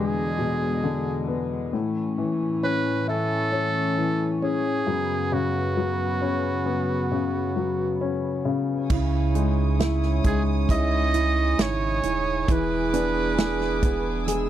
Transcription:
Already playing: grand piano E2 B2 D3 G#3 B3, string section E2 D3 G#3, muted trumpet G#4
0.39 grand piano B2
0.84 grand piano D3
1.28 grand piano B3
1.73 string section A2 E3 C#4, grand piano A2
2.18 grand piano E3
2.63 grand piano C#4, muted trumpet B4
3.08 grand piano E4, muted trumpet A4
3.52 grand piano C#4
3.98 grand piano E3
4.42 grand piano C#4, muted trumpet G#4
4.86 string section F#2 C#3 B3, grand piano F#2
5.32 grand piano C#3, muted trumpet F#4
5.77 grand piano F#3
6.21 grand piano C#4
6.66 grand piano B3
7.12 grand piano C#3
7.56 grand piano F#3
8.01 grand piano C#4
8.45 grand piano C#3
8.89 sub bass C#2, steel-string acoustic guitar C#3 E4, grand piano C#3, string section C#5 G#5 D#6, kick, crash
9.35 grand piano G#3, steel-string acoustic guitar D#4, closed hi-hat
9.79 grand piano E4, steel-string acoustic guitar E4, snare, closed hi-hat
10.03 snare
10.24 sub bass C#2, grand piano G#3, steel-string acoustic guitar D#4, muted trumpet G#4, kick, closed hi-hat
10.69 sub bass C#2, steel-string acoustic guitar G#3, grand piano E4, muted trumpet D#5, kick, closed hi-hat
11.14 steel-string acoustic guitar E4, closed hi-hat
11.58 sub bass G#1, steel-string acoustic guitar D#4, muted trumpet C#5, snare, closed hi-hat
12.03 sub bass D#1, steel-string acoustic guitar E4, closed hi-hat
12.47 sub bass E1, steel-string acoustic guitar E2 E4, grand piano E3, string section G#4 D6, kick, closed hi-hat
12.52 muted trumpet B4
12.93 grand piano B3, steel-string acoustic guitar D4, closed hi-hat
13.38 steel-string acoustic guitar E4, grand piano G#4, snare, closed hi-hat
13.61 snare
13.82 grand piano B3, steel-string acoustic guitar D4, kick, closed hi-hat
14.27 steel-string acoustic guitar G#3, grand piano G#4, string section E6, closed hi-hat

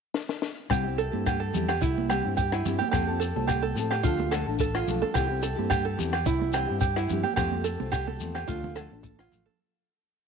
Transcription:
0.14 snare
0.29 snare
0.42 snare
0.70 fingered electric bass C2, nylon-string guitar G3 C4 E4 G4, five-string banjo G4, kick, cross-stick, low agogo, shekere
0.83 nylon-string guitar C4 E4 G4
0.98 five-string banjo A4, closed hi-hat
1.12 fingered electric bass G2, nylon-string guitar C4 E4 G4, high conga
1.26 five-string banjo G4, kick, cross-stick, low agogo, shekere
1.40 five-string banjo A4
1.53 fingered electric bass E2, nylon-string guitar G3 C4 E4 G4, closed hi-hat, low conga, shekere
1.68 five-string banjo G4, cross-stick, low agogo
1.81 fingered electric bass C2, five-string banjo E4, kick, shekere
1.98 high conga
2.09 nylon-string guitar G3 C4 G4, five-string banjo G4, cross-stick, closed hi-hat, low agogo, shekere
2.24 fingered electric bass G2, nylon-string guitar C4 E4 G4
2.37 five-string banjo G4, kick, shekere
2.52 five-string banjo E4, cross-stick, low agogo
2.65 fingered electric bass G2, nylon-string guitar G3 C4 E4 G4, closed hi-hat, low conga, shekere
2.79 five-string banjo G4, high conga
2.91 fingered electric bass F2, nylon-string guitar F3 C4 F4 A4, five-string banjo G4, kick, cross-stick, low agogo, shekere
3.07 nylon-string guitar C4 F4 A4
3.20 five-string banjo A4, closed hi-hat, shekere
3.35 fingered electric bass C2, nylon-string guitar C4 F4 A4, high conga
3.47 five-string banjo G4, kick, cross-stick, low agogo, shekere
3.62 five-string banjo A4
3.75 fingered electric bass A2, nylon-string guitar F3 C4 F4 A4, closed hi-hat, shekere
3.91 five-string banjo G4, cross-stick, low agogo
4.03 fingered electric bass D2, nylon-string guitar F3 A3 D4 A4, five-string banjo F4, kick, shekere
4.20 high conga
4.31 nylon-string guitar F3 A3 D4 A4, five-string banjo A4, cross-stick, closed hi-hat, low agogo, shekere
4.46 fingered electric bass A1, nylon-string guitar A3 D4 A4
4.59 five-string banjo A4, kick, shekere
4.75 five-string banjo F4, cross-stick, low agogo
4.86 fingered electric bass B1, nylon-string guitar F3 A3 D4 A4, closed hi-hat, low conga, shekere
5.02 five-string banjo A4, high conga
5.14 fingered electric bass C2, nylon-string guitar E3 C4 E4 G4, five-string banjo G4, kick, cross-stick, low agogo, shekere
5.28 nylon-string guitar C4 E4 G4
5.43 five-string banjo A4, closed hi-hat, shekere
5.56 fingered electric bass G2, nylon-string guitar C4 E4 G4, high conga
5.70 five-string banjo G4, kick, cross-stick, low agogo, shekere
5.85 five-string banjo A4
5.96 fingered electric bass E2, nylon-string guitar E3 C4 E4 G4, closed hi-hat, low conga, shekere
6.13 five-string banjo G4, cross-stick, low agogo
6.26 fingered electric bass C2, five-string banjo E4, kick, shekere
6.42 high conga
6.52 nylon-string guitar E3 C4 E4 G4, five-string banjo G4, cross-stick, closed hi-hat, low agogo, shekere
6.68 fingered electric bass G2, nylon-string guitar C4 E4 G4
6.81 five-string banjo G4, kick, shekere
6.96 five-string banjo E4, cross-stick, low agogo
7.09 fingered electric bass G2, nylon-string guitar E3 C4 E4 G4, closed hi-hat, low conga, shekere
7.23 five-string banjo G4, high conga
7.36 fingered electric bass F2, nylon-string guitar F3 A3 C4 F4, five-string banjo G4, kick, cross-stick, low agogo, shekere
7.52 nylon-string guitar F4, muted nylon-string guitar stroke, high conga
7.56 nylon-string guitar A3
7.64 five-string banjo A4, closed hi-hat, shekere
7.79 fingered electric bass C2, nylon-string guitar A3 C4 F4, high conga
7.92 five-string banjo G4, kick, cross-stick, low agogo, shekere
8.07 five-string banjo A4, high conga
8.20 fingered electric bass E2, nylon-string guitar F3 A3 C4, closed hi-hat, shekere
8.24 nylon-string guitar F4
8.35 five-string banjo G4, cross-stick, low agogo
8.47 fingered electric bass D2, nylon-string guitar F3 A3 D4 F4, five-string banjo F4, kick, shekere
8.64 high conga, low conga
8.75 nylon-string guitar F3 A3 D4, five-string banjo A4, cross-stick, closed hi-hat, low agogo, shekere
8.80 nylon-string guitar F4
8.90 fingered electric bass A1, nylon-string guitar A3 D4 F4, high conga
9.03 five-string banjo A4, kick, high conga, shekere
9.19 five-string banjo F4, cross-stick, high conga, low agogo
9.32 fingered electric bass A1, nylon-string guitar F3 A3 D4, closed hi-hat, low conga, shekere
9.36 nylon-string guitar F4
9.46 five-string banjo A4, low conga

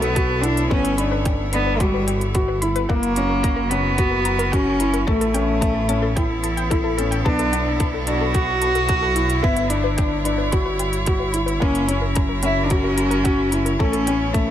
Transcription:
Already playing: detuned saw bass B1, string quartet B3 E4 A4 C#5
0.00 cello B3, synth arpeggio sound A4, closed hi-hat
0.15 felt piano F#4, synth arpeggio sound A5, kick, closed hi-hat
0.29 synth arpeggio sound A4
0.41 cello D4, felt piano E4, synth arpeggio sound F#5, closed hi-hat
0.57 closed hi-hat
0.69 detuned saw bass G1, felt piano B3, cello C#4, synth arpeggio sound B5, kick
0.84 synth arpeggio sound B4, closed hi-hat
0.98 felt piano D4, synth arpeggio sound B5, closed hi-hat
1.11 synth arpeggio sound B4
1.25 synth arpeggio sound G5, kick, closed hi-hat
1.53 cello B3, felt piano D4, synth arpeggio sound B5, closed hi-hat
1.67 synth arpeggio sound B4
1.80 cello G3, felt piano F#4, synth arpeggio sound B5, kick, closed hi-hat
1.94 synth arpeggio sound B4
2.07 synth arpeggio sound G5, closed hi-hat
2.21 closed hi-hat
2.34 felt piano F#4, synth arpeggio sound B5, kick, closed hi-hat
2.48 synth arpeggio sound B4
2.62 felt piano E4, synth arpeggio sound B5, closed hi-hat
2.76 synth arpeggio sound B4, closed hi-hat
2.89 detuned saw bass F#1, felt piano A#3, cello A#3, string quartet E4, synth arpeggio sound F#5, kick
3.00 string quartet F#4, closed hi-hat
3.16 felt piano C#4, synth arpeggio sound A#5, closed hi-hat
3.29 synth arpeggio sound A#4
3.43 synth arpeggio sound A#5, kick, closed hi-hat
3.56 synth arpeggio sound A#4
3.60 string quartet A#4
3.69 cello B3, felt piano C#4, synth arpeggio sound F#5, closed hi-hat
3.80 string quartet C#5
3.98 felt piano F#4, synth arpeggio sound A#5, kick, closed hi-hat
4.11 synth arpeggio sound A#4
4.25 synth arpeggio sound A#5, closed hi-hat
4.39 synth arpeggio sound A#4, closed hi-hat
4.52 cello C#4, felt piano F#4, synth arpeggio sound F#5, kick, closed hi-hat
4.80 felt piano E4, synth arpeggio sound A#5, closed hi-hat
4.94 synth arpeggio sound A#4, closed hi-hat
5.07 detuned saw bass A1, felt piano A3, cello A3, string quartet B3, synth arpeggio sound A5, kick
5.21 synth arpeggio sound A4, closed hi-hat
5.34 felt piano C#4, synth arpeggio sound G5, closed hi-hat
5.61 synth arpeggio sound A5, kick, closed hi-hat
5.69 string quartet A4
5.75 synth arpeggio sound A4
5.89 felt piano C#4, synth arpeggio sound A5, closed hi-hat
6.02 synth arpeggio sound A4
6.16 felt piano E4, synth arpeggio sound G5, kick, closed hi-hat
6.43 synth arpeggio sound A5, closed hi-hat
6.57 synth arpeggio sound G5, closed hi-hat
6.70 felt piano E4, synth arpeggio sound A4, kick, closed hi-hat
6.84 synth arpeggio sound A4
6.98 felt piano C#4, synth arpeggio sound A4, closed hi-hat
7.11 synth arpeggio sound G5, closed hi-hat
7.25 detuned saw bass B1, felt piano B3, cello D4, synth arpeggio sound A5, kick
7.39 synth arpeggio sound A4, closed hi-hat
7.53 felt piano D4, synth arpeggio sound F#5, closed hi-hat
7.80 synth arpeggio sound A5, kick, closed hi-hat
7.94 synth arpeggio sound A4
8.06 felt piano D4, cello F#4, synth arpeggio sound A5, closed hi-hat
8.21 synth arpeggio sound A4
8.34 felt piano F#4, synth arpeggio sound F#5, kick, closed hi-hat
8.62 synth arpeggio sound A5, closed hi-hat
8.75 synth arpeggio sound A4, closed hi-hat
8.89 felt piano F#4, synth arpeggio sound A5, kick, closed hi-hat
9.02 synth arpeggio sound A4
9.15 felt piano E4, synth arpeggio sound F#5, closed hi-hat
9.30 closed hi-hat
9.42 felt piano B3, cello E4, synth arpeggio sound B5, kick
9.57 synth arpeggio sound B4, closed hi-hat
9.69 cello D4, felt piano D4, synth arpeggio sound B5, closed hi-hat
9.84 synth arpeggio sound B4
9.97 synth arpeggio sound G5, kick, closed hi-hat
10.25 felt piano D4, synth arpeggio sound B5, closed hi-hat
10.38 synth arpeggio sound B4
10.52 felt piano F#4, synth arpeggio sound B5, kick, closed hi-hat
10.65 synth arpeggio sound B4
10.79 synth arpeggio sound G5, closed hi-hat
10.93 closed hi-hat
11.06 felt piano F#4, synth arpeggio sound B5, kick, closed hi-hat
11.20 synth arpeggio sound B4
11.32 felt piano E4, synth arpeggio sound B5, closed hi-hat
11.46 synth arpeggio sound B4, closed hi-hat
11.60 detuned saw bass F#1, felt piano A#3, cello C#4, synth arpeggio sound F#5, kick
11.75 closed hi-hat
11.88 felt piano C#4, string quartet F#4, synth arpeggio sound A#5, closed hi-hat
11.93 string quartet A#4
12.01 synth arpeggio sound A#4
12.15 synth arpeggio sound A#5, kick, closed hi-hat
12.29 synth arpeggio sound A#4
12.43 felt piano C#4, cello E4, synth arpeggio sound F#5, closed hi-hat
12.63 cello D4
12.70 cello C#4, felt piano F#4, synth arpeggio sound A#5, kick, closed hi-hat
12.84 synth arpeggio sound A#4
12.97 synth arpeggio sound A#5, closed hi-hat
13.10 synth arpeggio sound A#4, closed hi-hat
13.24 felt piano F#4, synth arpeggio sound F#5, kick, closed hi-hat
13.51 felt piano E4, synth arpeggio sound A#5, closed hi-hat
13.65 synth arpeggio sound A#4, closed hi-hat
13.79 detuned saw bass A1, felt piano A3, string quartet B3, cello C#4, synth arpeggio sound A5, kick
13.92 synth arpeggio sound A4, string quartet A4, closed hi-hat
14.07 felt piano C#4, synth arpeggio sound G5, closed hi-hat
14.33 cello A3, synth arpeggio sound A5, kick, closed hi-hat
14.48 synth arpeggio sound A4

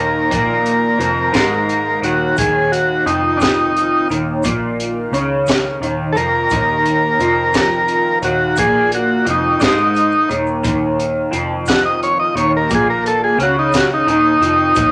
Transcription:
Already playing: fingered electric bass D#1, clean electric guitar D#2 D#3, harmonium D#3 A#3 D#4 A#4
0.00 transistor combo organ A#4
0.31 fingered electric bass A#1, clean electric guitar A#2 A#3, kick, closed hi-hat
0.66 closed hi-hat
0.98 fingered electric bass F1, clean electric guitar F2 F3, closed hi-hat
1.32 fingered electric bass G#1, clean electric guitar G#2 G#3, kick, snare, closed hi-hat
1.69 closed hi-hat
2.02 fingered electric bass D#1, clean electric guitar D#2 D#3, transistor combo organ F#4, closed hi-hat
2.37 fingered electric bass D#1, clean electric guitar D#2 D#3, transistor combo organ G#4, harmonium F5, kick, closed hi-hat, maracas
2.72 transistor combo organ F#4, closed hi-hat
3.06 fingered electric bass F1, clean electric guitar F2 F3, transistor combo organ D#4, closed hi-hat, maracas
3.37 transistor combo organ D4, maracas
3.41 transistor combo organ D#4, kick, snare, closed hi-hat
3.77 closed hi-hat
4.09 fingered electric bass D#1, clean electric guitar D#2 D#3, closed hi-hat, maracas
4.43 fingered electric bass A#1, clean electric guitar A#2 A#3, kick, closed hi-hat, maracas
4.80 closed hi-hat
5.11 fingered electric bass C#2, clean electric guitar C#3 C#4, closed hi-hat, maracas
5.47 kick, snare, closed hi-hat, maracas
5.80 fingered electric bass D#1, clean electric guitar D#2 D#3, closed hi-hat
6.13 fingered electric bass F1, clean electric guitar F2, transistor combo organ A4 A#4, maracas
6.17 clean electric guitar F3, closed hi-hat
6.50 fingered electric bass D#1, clean electric guitar D#2 D#3, kick, closed hi-hat, maracas
6.86 closed hi-hat
7.19 fingered electric bass F1, clean electric guitar F2 F3, closed hi-hat, maracas
7.54 kick, snare, closed hi-hat, maracas
7.88 closed hi-hat
8.22 fingered electric bass D#1, clean electric guitar D#2 D#3, transistor combo organ F#4, closed hi-hat, maracas
8.56 fingered electric bass A#1, clean electric guitar A#2 A#3, transistor combo organ G#4, kick, closed hi-hat, maracas
8.92 transistor combo organ F#4, closed hi-hat
9.25 fingered electric bass F1, clean electric guitar F2 F3, closed hi-hat
9.30 transistor combo organ D#4
9.60 fingered electric bass G#1, clean electric guitar G#2 G#3, transistor combo organ D4, kick, snare, closed hi-hat, maracas
9.65 transistor combo organ D#4
9.78 maracas
9.95 closed hi-hat, maracas
10.12 maracas
10.29 fingered electric bass D#1, clean electric guitar D#2 D#3, closed hi-hat, maracas
10.47 maracas
10.63 fingered electric bass D#1, clean electric guitar D#2 D#3, kick, closed hi-hat, maracas
11.00 closed hi-hat
11.32 fingered electric bass F1, clean electric guitar F2 F3, closed hi-hat, maracas
11.66 transistor combo organ F#5, kick, snare, closed hi-hat, maracas
11.85 transistor combo organ D#5
12.03 transistor combo organ C#5, closed hi-hat
12.20 transistor combo organ D#5
12.35 fingered electric bass D#1, clean electric guitar D#2 D#3, transistor combo organ C#5, closed hi-hat, maracas
12.57 transistor combo organ A#4
12.70 fingered electric bass A#1, clean electric guitar A#2 A#3, kick, closed hi-hat, maracas
12.75 transistor combo organ G#4
12.90 transistor combo organ A#4
13.06 transistor combo organ A4, closed hi-hat
13.24 transistor combo organ G#4
13.38 fingered electric bass C#2, clean electric guitar C#3 C#4, closed hi-hat, maracas
13.43 transistor combo organ F#4
13.59 transistor combo organ D#4
13.73 transistor combo organ F#4, kick, snare, closed hi-hat, maracas
13.94 transistor combo organ D#4
14.06 fingered electric bass D#1, clean electric guitar D#2 D#3, closed hi-hat
14.10 transistor combo organ D#4
14.40 fingered electric bass F1, clean electric guitar F2 F3, closed hi-hat, maracas
14.75 fingered electric bass D#1, clean electric guitar D#2 D#3, kick, closed hi-hat, maracas

